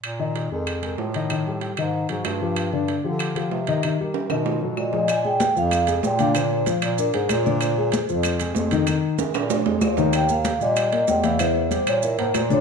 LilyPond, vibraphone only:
\new Staff \with { instrumentName = "Vibraphone" } { \time 4/4 \key bes \mixolydian \tempo 4 = 190 r1 | r1 | r1 | r2. dis''4 |
aes''8 g''4 f''4. g''8 f''8 | c''4. d''8 bes'8 c''4 d''8 | c''2 r2 | r2. d''4 |
g''8 f''4 ees''4. g''8 f''8 | c''4. des''8 bes'8 c''4 des''8 | }